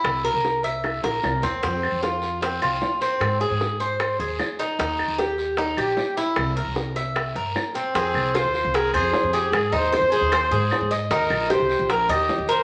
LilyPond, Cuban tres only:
\new Staff \with { instrumentName = "Cuban tres" } { \time 4/4 \key f \minor \tempo 4 = 152 e'8 bes'4 e''4 bes'4 c'8 | c'4 f'4 c'8 f'4 c'8~ | c'8 aes'4 c''4 aes'4 ees'8 | ees'4 g'4 ees'8 g'4 e'8~ |
e'8 bes'4 e''4 bes'4 c'8 | c'4 f'4 aes'8 c''4 aes'8~ | aes'8 ees'8 c''8 aes'8 c''8 aes'4 ees''8 | ees'4 g'4 bes'8 ees''4 bes'8 | }